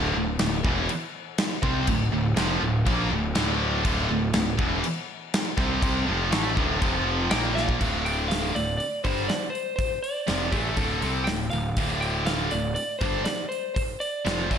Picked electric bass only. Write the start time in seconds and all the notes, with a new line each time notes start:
Already playing: D1
0.15 D1
0.40 D1
0.64 E1
1.63 C2
1.88 D1
2.12 D1
2.36 F1
2.61 D1
2.86 A#1
3.11 D1
3.36 D1
3.85 D1
4.10 D1
4.35 D1
4.59 E1
5.58 C2
5.82 C2
6.08 F1
6.33 A1
6.58 D1
6.82 F1
7.32 A#1
7.81 D1
8.56 D1
9.05 G1
10.29 F1
10.53 A1
10.78 D1
11.03 C2
11.28 D1
11.52 D1
11.77 D1
12.53 D1
13.01 G1
14.26 F1
14.51 A1